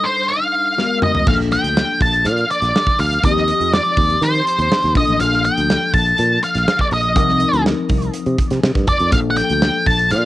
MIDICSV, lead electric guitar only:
0, 0, Header, 1, 2, 480
1, 0, Start_track
1, 0, Tempo, 491400
1, 1238, Time_signature, 4, 2, 24, 8
1, 10014, End_track
2, 0, Start_track
2, 0, Title_t, "Lead electric guitar"
2, 0, Program_c, 0, 29
2, 40, Note_on_c, 0, 72, 77
2, 275, Note_on_c, 0, 77, 84
2, 286, Note_off_c, 0, 72, 0
2, 958, Note_off_c, 0, 77, 0
2, 1010, Note_on_c, 0, 75, 84
2, 1248, Note_off_c, 0, 75, 0
2, 1251, Note_on_c, 0, 77, 105
2, 1314, Note_off_c, 0, 77, 0
2, 1490, Note_on_c, 0, 79, 98
2, 1931, Note_off_c, 0, 79, 0
2, 1973, Note_on_c, 0, 81, 100
2, 2211, Note_on_c, 0, 77, 93
2, 2213, Note_off_c, 0, 81, 0
2, 2428, Note_off_c, 0, 77, 0
2, 2453, Note_on_c, 0, 74, 94
2, 2926, Note_off_c, 0, 74, 0
2, 2930, Note_on_c, 0, 77, 92
2, 3170, Note_off_c, 0, 77, 0
2, 3174, Note_on_c, 0, 75, 96
2, 3649, Note_off_c, 0, 75, 0
2, 3652, Note_on_c, 0, 74, 87
2, 4132, Note_on_c, 0, 72, 86
2, 4139, Note_off_c, 0, 74, 0
2, 4806, Note_off_c, 0, 72, 0
2, 4857, Note_on_c, 0, 75, 88
2, 5071, Note_off_c, 0, 75, 0
2, 5085, Note_on_c, 0, 77, 87
2, 5305, Note_off_c, 0, 77, 0
2, 5326, Note_on_c, 0, 79, 93
2, 5768, Note_off_c, 0, 79, 0
2, 5803, Note_on_c, 0, 81, 93
2, 6247, Note_off_c, 0, 81, 0
2, 6291, Note_on_c, 0, 77, 91
2, 6650, Note_off_c, 0, 77, 0
2, 6654, Note_on_c, 0, 74, 86
2, 6703, Note_off_c, 0, 74, 0
2, 6775, Note_on_c, 0, 75, 80
2, 7446, Note_off_c, 0, 75, 0
2, 8679, Note_on_c, 0, 74, 87
2, 8908, Note_off_c, 0, 74, 0
2, 8912, Note_on_c, 0, 77, 104
2, 8961, Note_off_c, 0, 77, 0
2, 9088, Note_on_c, 0, 78, 70
2, 9150, Note_off_c, 0, 78, 0
2, 9154, Note_on_c, 0, 79, 106
2, 9638, Note_off_c, 0, 79, 0
2, 9642, Note_on_c, 0, 81, 94
2, 9861, Note_off_c, 0, 81, 0
2, 9879, Note_on_c, 0, 77, 98
2, 10014, Note_off_c, 0, 77, 0
2, 10014, End_track
0, 0, End_of_file